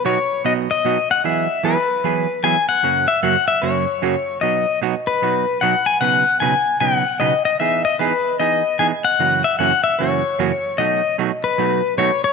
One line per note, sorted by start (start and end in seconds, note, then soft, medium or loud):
0.05 0.17 B2 medium
0.05 0.17 F#3 medium
0.05 0.17 B3 medium
0.05 0.17 D#4 medium
0.05 0.17 F#4 medium
0.05 0.43 C#5 medium
0.44 0.67 B2 medium
0.44 0.67 F#3 medium
0.44 0.67 B3 medium
0.44 0.67 D#4 medium
0.44 0.67 F#4 medium
0.44 0.53 D#5 medium
0.71 1.11 D#5 loud
0.85 0.96 B2 medium
0.85 0.97 F#3 medium
0.85 0.97 B3 medium
0.85 0.97 D#4 medium
0.85 0.97 F#4 medium
1.11 1.25 F#5 loud
1.24 1.46 E3 medium
1.24 1.46 F#3 medium
1.24 1.47 B3 medium
1.24 1.47 E4 medium
1.24 1.47 G#4 medium
1.24 1.66 E5 loud
1.63 1.76 E3 medium
1.63 1.76 F#3 medium
1.63 1.76 B3 medium
1.63 1.76 E4 medium
1.63 1.76 G#4 medium
1.63 2.47 B4 medium
2.04 2.26 E3 medium
2.04 2.26 F#3 medium
2.04 2.26 B3 medium
2.04 2.26 E4 medium
2.04 2.26 G#4 medium
2.43 2.55 E3 medium
2.43 2.55 F#3 medium
2.43 2.56 B3 medium
2.43 2.56 E4 medium
2.43 2.56 G#4 medium
2.43 2.68 G#5 loud
2.69 3.06 F#5 loud
2.83 3.05 F#2 medium
2.83 3.05 C#3 medium
2.83 3.05 F#3 medium
2.83 3.06 A#3 medium
2.83 3.06 C#4 medium
2.83 3.06 F#4 medium
3.08 3.22 E5 medium
3.23 3.35 F#2 medium
3.23 3.35 C#3 medium
3.23 3.35 F#3 medium
3.23 3.35 A#3 medium
3.23 3.35 C#4 medium
3.23 3.35 F#4 medium
3.23 3.47 F#5 medium
3.48 3.63 E5 loud
3.62 3.85 F#2 medium
3.62 3.85 C#3 medium
3.62 3.85 F#3 medium
3.62 3.85 A#3 medium
3.62 3.85 C#4 medium
3.62 3.85 F#4 medium
3.62 4.38 C#5 medium
4.02 4.14 F#2 medium
4.02 4.14 C#3 medium
4.02 4.14 F#3 medium
4.02 4.15 A#3 medium
4.02 4.15 C#4 medium
4.02 4.15 F#4 medium
4.41 4.64 B2 medium
4.41 4.64 F#3 medium
4.41 4.65 B3 medium
4.41 4.65 D#4 medium
4.41 4.65 F#4 medium
4.41 4.79 D#5 medium
4.82 4.94 B2 medium
4.82 4.94 F#3 medium
4.82 4.94 B3 medium
4.82 4.94 D#4 medium
4.82 4.94 F#4 medium
5.07 5.63 B4 medium
5.22 5.44 B2 medium
5.22 5.44 F#3 medium
5.22 5.44 B3 medium
5.22 5.45 D#4 medium
5.22 5.45 F#4 medium
5.61 5.74 B2 medium
5.61 5.74 F#3 medium
5.61 5.74 B3 medium
5.61 5.74 D#4 medium
5.61 5.74 F#4 medium
5.61 5.85 F#5 medium
5.86 6.00 G#5 medium
6.01 6.23 B2 medium
6.01 6.23 C#3 medium
6.01 6.23 F#3 medium
6.01 6.24 B3 medium
6.01 6.24 D#4 medium
6.01 6.24 B4 medium
6.01 6.40 F#5 loud
6.40 6.53 B2 medium
6.40 6.53 C#3 medium
6.40 6.53 F#3 medium
6.40 6.53 B3 medium
6.40 6.53 D#4 medium
6.40 6.53 B4 medium
6.40 6.80 G#5 medium
6.80 7.03 B2 medium
6.80 7.03 C#3 medium
6.80 7.03 F#3 medium
6.80 7.03 B3 medium
6.80 7.03 D#4 medium
6.80 7.03 B4 medium
6.80 7.22 F#5 medium
7.20 7.32 B2 medium
7.20 7.32 C#3 medium
7.20 7.32 F#3 medium
7.20 7.32 B3 medium
7.20 7.32 D#4 medium
7.20 7.33 B4 medium
7.20 7.44 D#5 medium
7.45 7.59 D#5 medium
7.60 7.82 E3 medium
7.60 7.82 B3 medium
7.60 7.83 D#4 medium
7.60 7.83 G#4 medium
7.60 7.84 E5 medium
7.85 8.00 D#5 medium
7.99 8.12 E3 medium
7.99 8.12 B3 medium
7.99 8.12 D#4 medium
7.99 8.12 G#4 medium
7.99 8.37 B4 medium
8.39 8.62 E3 medium
8.39 8.62 B3 medium
8.39 8.62 D#4 medium
8.39 8.62 G#4 medium
8.39 8.81 D#5 medium
8.79 8.91 E3 medium
8.79 8.91 B3 medium
8.79 8.92 D#4 medium
8.79 8.92 G#4 medium
8.79 8.86 G#5 medium
9.04 9.42 F#5 loud
9.19 9.41 F#2 medium
9.19 9.41 C#3 medium
9.19 9.41 E3 medium
9.19 9.42 A#3 medium
9.19 9.42 C#4 medium
9.19 9.42 F#4 medium
9.44 9.58 E5 medium
9.59 9.71 F#2 medium
9.59 9.71 C#3 medium
9.59 9.71 E3 medium
9.59 9.71 A#3 medium
9.59 9.71 C#4 medium
9.59 9.72 F#4 loud
9.59 9.83 F#5 medium
9.84 9.99 E5 medium
9.99 10.21 F#2 medium
9.99 10.21 C#3 medium
9.99 10.22 E3 medium
9.99 10.22 A#3 medium
9.99 10.22 C#4 medium
9.99 10.22 F#4 medium
9.99 10.81 C#5 medium
10.39 10.51 F#2 medium
10.39 10.51 C#3 medium
10.39 10.51 E3 medium
10.39 10.51 A#3 medium
10.39 10.51 C#4 medium
10.39 10.51 F#4 medium
10.78 11.01 B2 medium
10.78 11.01 F#3 medium
10.78 11.01 A3 medium
10.78 11.01 D#4 medium
10.78 11.01 F#4 medium
10.78 11.16 D#5 medium
11.18 11.30 B2 medium
11.18 11.30 F#3 medium
11.18 11.30 A3 medium
11.18 11.30 D#4 medium
11.18 11.31 F#4 medium
11.44 11.94 B4 medium
11.58 11.80 B2 medium
11.58 11.80 F#3 medium
11.58 11.81 A3 medium
11.58 11.81 D#4 medium
11.58 11.81 F#4 medium
11.98 12.10 B2 medium
11.98 12.10 F#3 medium
11.98 12.10 A3 medium
11.98 12.10 D#4 medium
11.98 12.10 F#4 medium
11.98 12.23 C#5 medium
12.24 12.33 C#5 medium